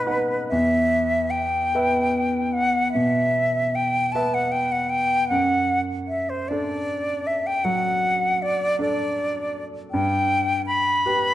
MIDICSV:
0, 0, Header, 1, 3, 480
1, 0, Start_track
1, 0, Key_signature, 1, "minor"
1, 0, Tempo, 904977
1, 264, Tempo, 828729
1, 265, Time_signature, 12, 3, 24, 8
1, 744, Tempo, 806452
1, 2184, Tempo, 779221
1, 4584, Tempo, 757576
1, 6928, End_track
2, 0, Start_track
2, 0, Title_t, "Flute"
2, 0, Program_c, 0, 73
2, 0, Note_on_c, 0, 71, 84
2, 239, Note_off_c, 0, 71, 0
2, 257, Note_on_c, 0, 76, 80
2, 731, Note_on_c, 0, 79, 79
2, 740, Note_off_c, 0, 76, 0
2, 1460, Note_on_c, 0, 78, 74
2, 1469, Note_off_c, 0, 79, 0
2, 1689, Note_off_c, 0, 78, 0
2, 1693, Note_on_c, 0, 76, 76
2, 2188, Note_on_c, 0, 79, 73
2, 2198, Note_off_c, 0, 76, 0
2, 2416, Note_on_c, 0, 81, 80
2, 2425, Note_off_c, 0, 79, 0
2, 2551, Note_on_c, 0, 78, 69
2, 2560, Note_off_c, 0, 81, 0
2, 2660, Note_on_c, 0, 79, 75
2, 2669, Note_off_c, 0, 78, 0
2, 2783, Note_on_c, 0, 78, 70
2, 2792, Note_off_c, 0, 79, 0
2, 2892, Note_on_c, 0, 79, 74
2, 2901, Note_off_c, 0, 78, 0
2, 3128, Note_off_c, 0, 79, 0
2, 3132, Note_on_c, 0, 78, 75
2, 3449, Note_off_c, 0, 78, 0
2, 3620, Note_on_c, 0, 76, 63
2, 3754, Note_on_c, 0, 72, 61
2, 3764, Note_off_c, 0, 76, 0
2, 3871, Note_on_c, 0, 74, 72
2, 3880, Note_off_c, 0, 72, 0
2, 4354, Note_on_c, 0, 76, 68
2, 4364, Note_off_c, 0, 74, 0
2, 4476, Note_on_c, 0, 79, 67
2, 4485, Note_off_c, 0, 76, 0
2, 4585, Note_on_c, 0, 78, 73
2, 4595, Note_off_c, 0, 79, 0
2, 5079, Note_on_c, 0, 74, 72
2, 5089, Note_off_c, 0, 78, 0
2, 5315, Note_off_c, 0, 74, 0
2, 5322, Note_on_c, 0, 74, 74
2, 5850, Note_off_c, 0, 74, 0
2, 6021, Note_on_c, 0, 79, 78
2, 6470, Note_off_c, 0, 79, 0
2, 6501, Note_on_c, 0, 83, 82
2, 6928, Note_off_c, 0, 83, 0
2, 6928, End_track
3, 0, Start_track
3, 0, Title_t, "Grand piano"
3, 0, Program_c, 1, 0
3, 0, Control_c, 1, 64, 127
3, 0, Note_on_c, 1, 63, 45
3, 0, Note_on_c, 1, 71, 43
3, 0, Note_on_c, 1, 78, 47
3, 34, Note_off_c, 1, 63, 0
3, 34, Note_on_c, 1, 63, 41
3, 36, Note_off_c, 1, 71, 0
3, 36, Note_off_c, 1, 78, 0
3, 36, Note_on_c, 1, 71, 45
3, 36, Note_on_c, 1, 78, 47
3, 248, Note_off_c, 1, 63, 0
3, 249, Note_off_c, 1, 71, 0
3, 249, Note_off_c, 1, 78, 0
3, 275, Control_c, 1, 64, 0
3, 275, Note_on_c, 1, 40, 52
3, 389, Control_c, 1, 64, 127
3, 969, Note_off_c, 1, 40, 0
3, 992, Note_on_c, 1, 59, 39
3, 994, Note_on_c, 1, 71, 40
3, 998, Note_on_c, 1, 76, 44
3, 1683, Note_off_c, 1, 59, 0
3, 1684, Note_off_c, 1, 71, 0
3, 1686, Note_off_c, 1, 76, 0
3, 1709, Note_on_c, 1, 47, 43
3, 2431, Note_on_c, 1, 59, 42
3, 2433, Note_on_c, 1, 71, 42
3, 2437, Note_on_c, 1, 76, 42
3, 2861, Note_off_c, 1, 47, 0
3, 3123, Note_off_c, 1, 59, 0
3, 3125, Note_off_c, 1, 71, 0
3, 3126, Note_off_c, 1, 76, 0
3, 3144, Note_on_c, 1, 42, 49
3, 3157, Control_c, 1, 64, 0
3, 3261, Control_c, 1, 64, 127
3, 3850, Note_off_c, 1, 42, 0
3, 3884, Note_on_c, 1, 62, 38
3, 3885, Note_on_c, 1, 69, 37
3, 3889, Note_on_c, 1, 74, 42
3, 4565, Note_off_c, 1, 62, 0
3, 4566, Note_off_c, 1, 69, 0
3, 4568, Note_off_c, 1, 74, 0
3, 4586, Note_on_c, 1, 54, 44
3, 5310, Note_on_c, 1, 62, 40
3, 5316, Note_on_c, 1, 74, 47
3, 5317, Note_on_c, 1, 69, 41
3, 5738, Note_off_c, 1, 54, 0
3, 5994, Note_off_c, 1, 62, 0
3, 5997, Note_off_c, 1, 69, 0
3, 5997, Note_off_c, 1, 74, 0
3, 6029, Control_c, 1, 64, 0
3, 6037, Note_on_c, 1, 43, 53
3, 6121, Control_c, 1, 64, 127
3, 6728, Note_off_c, 1, 43, 0
3, 6749, Note_on_c, 1, 67, 41
3, 6749, Note_on_c, 1, 71, 46
3, 6928, Note_off_c, 1, 67, 0
3, 6928, Note_off_c, 1, 71, 0
3, 6928, End_track
0, 0, End_of_file